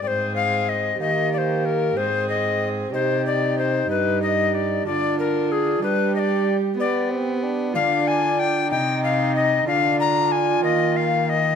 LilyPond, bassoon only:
\new Staff \with { instrumentName = "Bassoon" } { \time 6/8 \key c \minor \tempo 4. = 62 c'4. bes4. | c'4. ees'4.~ | ees'4. d'4. | d'4 r8 b8 c'8 d'8 |
d'4. ees'4. | d'4. bes4. | }